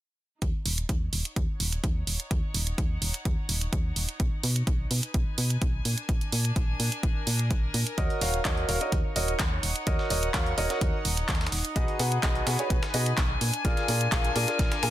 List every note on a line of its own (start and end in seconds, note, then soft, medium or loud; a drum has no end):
0.42 0.52 D#2 loud
0.42 5.85 D#4 medium
0.42 kick loud
0.42 closed hi-hat medium
0.66 0.85 D#1 loud
0.66 open hi-hat loud
0.78 4.86 C#5 medium
0.78 closed hi-hat medium
0.89 1.08 D#2 medium
0.89 kick loud
0.89 closed hi-hat medium
1.13 1.23 D#1 medium
1.13 open hi-hat medium
1.25 4.86 F#5 medium
1.25 closed hi-hat medium
1.36 1.46 D#2 loud
1.36 kick loud
1.36 closed hi-hat medium
1.60 1.79 D#1 loud
1.60 open hi-hat loud
1.73 closed hi-hat medium
1.84 2.03 D#2 loud
1.84 kick loud
1.84 closed hi-hat medium
2.07 2.17 D#1 medium
2.07 open hi-hat medium
2.20 closed hi-hat medium
2.31 2.41 D#2 loud
2.31 kick loud
2.31 closed hi-hat medium
2.54 2.74 D#1 loud
2.54 open hi-hat loud
2.67 closed hi-hat medium
2.78 2.97 D#2 medium
2.78 kick loud
2.78 closed hi-hat medium
3.02 3.12 D#1 medium
3.02 open hi-hat loud
3.14 closed hi-hat medium
3.25 3.35 D#2 loud
3.25 kick loud
3.25 closed hi-hat medium
3.49 3.68 D#1 medium
3.49 open hi-hat loud
3.61 closed hi-hat medium
3.73 3.92 D#2 medium
3.73 kick loud
3.73 closed hi-hat medium
3.96 4.06 D#1 medium
3.96 open hi-hat medium
4.09 closed hi-hat medium
4.20 4.30 B1 loud
4.20 kick loud
4.20 closed hi-hat medium
4.43 4.63 B2 loud
4.43 open hi-hat loud
4.56 closed hi-hat soft
4.67 4.86 B1 medium
4.67 kick loud
4.67 closed hi-hat medium
4.91 5.01 B2 medium
4.91 5.85 B4 medium
4.91 9.21 G#5 medium
4.91 open hi-hat medium
5.03 closed hi-hat medium
5.14 5.24 B1 loud
5.14 kick loud
5.14 closed hi-hat medium
5.38 5.57 B2 loud
5.38 open hi-hat loud
5.50 closed hi-hat medium
5.62 5.81 B1 loud
5.62 kick loud
5.62 closed hi-hat medium
5.85 5.95 A#2 medium
5.85 7.98 D4 medium
5.85 open hi-hat medium
5.98 9.50 A#4 medium
5.98 closed hi-hat soft
6.09 6.19 A#1 loud
6.09 kick loud
6.09 closed hi-hat medium
6.21 closed hi-hat soft
6.32 6.52 A#2 loud
6.32 open hi-hat loud
6.45 closed hi-hat soft
6.56 6.75 A#1 medium
6.56 kick loud
6.56 closed hi-hat medium
6.80 6.90 A#2 medium
6.80 open hi-hat medium
6.92 closed hi-hat soft
7.03 7.13 A#1 loud
7.03 kick loud
7.03 closed hi-hat medium
7.27 7.52 A#2 loud
7.27 open hi-hat loud
7.39 closed hi-hat soft
7.51 7.70 A#1 loud
7.51 kick loud
7.51 closed hi-hat medium
7.74 7.84 A#2 loud
7.74 open hi-hat medium
7.87 closed hi-hat soft
7.98 8.08 D#2 loud
7.98 13.41 D#4 medium
7.98 8.19 F#4 medium
7.98 8.19 A#4 medium
7.98 8.19 C#5 medium
7.98 8.19 D#5 loud
7.98 kick loud
7.98 closed hi-hat medium
8.10 closed hi-hat soft
8.21 8.41 D#1 loud
8.21 8.37 F#4 medium
8.21 8.37 A#4 medium
8.21 8.38 C#5 medium
8.21 8.38 F5 medium
8.21 snare soft
8.21 closed hi-hat medium
8.21 open hi-hat loud
8.34 closed hi-hat soft
8.43 8.64 D#2 medium
8.43 8.66 F#4 medium
8.43 8.66 A#4 medium
8.43 12.42 C#5 medium
8.43 8.66 C#5 medium
8.43 8.66 D#5 medium
8.43 kick loud
8.43 snare loud
8.43 clap loud
8.43 closed hi-hat medium
8.57 closed hi-hat soft
8.69 8.79 D#1 medium
8.69 8.78 F#4 medium
8.69 8.78 A#4 medium
8.69 8.78 C#5 medium
8.69 8.78 F5 medium
8.69 closed hi-hat medium
8.69 open hi-hat medium
8.81 8.96 F#4 medium
8.81 8.96 A#4 medium
8.81 8.96 C#5 medium
8.81 8.96 D#5 medium
8.81 closed hi-hat soft
8.92 9.02 D#2 loud
8.92 kick loud
8.92 closed hi-hat medium
9.16 9.35 D#1 loud
9.16 9.32 F#4 medium
9.16 9.32 A#4 medium
9.16 9.32 C#5 medium
9.16 9.32 D#5 medium
9.16 closed hi-hat medium
9.16 open hi-hat loud
9.28 closed hi-hat soft
9.39 9.59 D#2 loud
9.39 kick loud
9.39 snare loud
9.39 clap loud
9.39 closed hi-hat medium
9.47 12.42 F#5 medium
9.63 9.73 D#1 medium
9.63 closed hi-hat medium
9.63 open hi-hat medium
9.76 closed hi-hat soft
9.87 9.97 D#2 loud
9.87 10.08 F#4 medium
9.87 10.08 A#4 medium
9.87 10.08 C#5 medium
9.87 10.08 D#5 medium
9.87 kick loud
9.87 closed hi-hat medium
9.99 snare soft
10.10 10.30 D#1 loud
10.10 10.26 F#4 medium
10.10 10.26 A#4 medium
10.10 10.26 C#5 medium
10.10 10.26 D#5 medium
10.10 closed hi-hat medium
10.10 open hi-hat loud
10.23 closed hi-hat soft
10.34 10.53 D#2 medium
10.34 10.50 F#4 medium
10.34 10.50 A#4 medium
10.34 10.50 C#5 medium
10.34 10.50 F5 medium
10.34 kick loud
10.34 snare loud
10.34 clap loud
10.34 closed hi-hat medium
10.46 closed hi-hat soft
10.58 10.68 D#1 medium
10.58 10.68 F#4 medium
10.58 10.68 A#4 medium
10.58 10.68 C#5 medium
10.58 10.68 D#5 medium
10.58 closed hi-hat medium
10.58 open hi-hat medium
10.70 10.95 F#4 medium
10.70 10.95 A#4 medium
10.70 10.95 C#5 medium
10.70 10.95 D#5 medium
10.70 snare medium
10.70 closed hi-hat medium
10.81 10.91 D#2 loud
10.81 kick loud
10.81 closed hi-hat medium
11.05 11.24 D#1 loud
11.05 closed hi-hat medium
11.05 open hi-hat loud
11.17 closed hi-hat medium
11.17 closed hi-hat soft
11.29 11.48 D#2 loud
11.29 kick loud
11.29 snare medium
11.29 clap loud
11.29 closed hi-hat medium
11.35 snare medium
11.35 closed hi-hat medium
11.41 snare medium
11.41 closed hi-hat medium
11.47 snare medium
11.47 closed hi-hat medium
11.52 11.62 D#1 medium
11.52 open hi-hat medium
11.65 closed hi-hat medium
11.76 11.86 B1 loud
11.76 11.97 F#4 medium
11.76 11.97 G#4 medium
11.76 11.97 B4 medium
11.76 11.97 D#5 loud
11.76 kick loud
11.76 closed hi-hat medium
11.88 closed hi-hat soft
11.98 12.19 B2 loud
11.98 12.15 F#4 medium
11.98 12.15 G#4 medium
11.98 12.15 B4 medium
11.98 12.15 F#5 medium
11.98 14.90 G#5 medium
11.98 snare soft
11.98 closed hi-hat medium
11.98 open hi-hat loud
12.12 closed hi-hat medium
12.23 12.42 B1 medium
12.23 12.44 F#4 medium
12.23 12.44 G#4 medium
12.23 13.41 B4 medium
12.23 12.44 B4 medium
12.23 12.44 D#5 loud
12.23 kick loud
12.23 snare loud
12.23 clap loud
12.23 closed hi-hat medium
12.35 closed hi-hat soft
12.47 12.57 B2 medium
12.47 12.56 F#4 medium
12.47 12.56 G#4 medium
12.47 12.56 B4 medium
12.47 12.56 F#5 medium
12.47 snare loud
12.47 closed hi-hat medium
12.47 open hi-hat medium
12.59 12.74 F#4 medium
12.59 12.74 G#4 medium
12.59 12.74 B4 medium
12.59 12.74 C#5 medium
12.59 closed hi-hat soft
12.59 closed hi-hat medium
12.70 12.80 B1 loud
12.70 kick loud
12.70 closed hi-hat medium
12.83 snare loud
12.83 closed hi-hat medium
12.94 13.13 B2 loud
12.94 13.10 F#4 medium
12.94 13.10 G#4 medium
12.94 13.10 B4 medium
12.94 13.10 D#5 medium
12.94 closed hi-hat soft
12.94 open hi-hat loud
13.06 closed hi-hat medium
13.17 13.37 B1 loud
13.17 kick loud
13.17 snare loud
13.17 clap loud
13.17 closed hi-hat medium
13.41 13.51 A#2 medium
13.41 14.90 D4 medium
13.41 closed hi-hat medium
13.41 open hi-hat medium
13.54 closed hi-hat medium
13.65 13.75 A#1 loud
13.65 13.86 F4 medium
13.65 13.86 G#4 medium
13.65 13.86 A#4 medium
13.65 13.86 D5 medium
13.65 kick loud
13.65 closed hi-hat medium
13.77 snare soft
13.77 closed hi-hat soft
13.88 14.08 A#2 loud
13.88 14.04 F4 medium
13.88 14.04 G#4 medium
13.88 14.04 A#4 medium
13.88 14.04 D5 medium
13.88 closed hi-hat medium
13.88 open hi-hat loud
14.01 14.90 A#4 medium
14.01 closed hi-hat medium
14.12 14.31 A#1 medium
14.12 14.28 F4 medium
14.12 14.28 G#4 medium
14.12 14.28 A#4 medium
14.12 14.28 F5 medium
14.12 kick loud
14.12 snare loud
14.12 clap loud
14.12 closed hi-hat medium
14.24 closed hi-hat soft
14.36 14.46 A#2 medium
14.36 14.46 F4 medium
14.36 14.46 G#4 medium
14.36 14.46 A#4 medium
14.36 14.46 D5 medium
14.36 closed hi-hat medium
14.36 open hi-hat medium
14.48 14.73 F4 medium
14.48 14.73 G#4 medium
14.48 14.73 A#4 medium
14.48 14.73 D5 medium
14.48 snare soft
14.48 closed hi-hat medium
14.59 14.69 A#1 loud
14.59 kick loud
14.59 snare loud
14.59 closed hi-hat medium
14.72 snare loud
14.72 closed hi-hat medium
14.72 closed hi-hat soft
14.83 14.90 A#2 medium
14.83 14.90 F4 medium
14.83 14.90 G#4 medium
14.83 14.90 A#4 medium
14.83 14.90 G#5 medium
14.83 snare loud
14.83 closed hi-hat medium
14.83 open hi-hat loud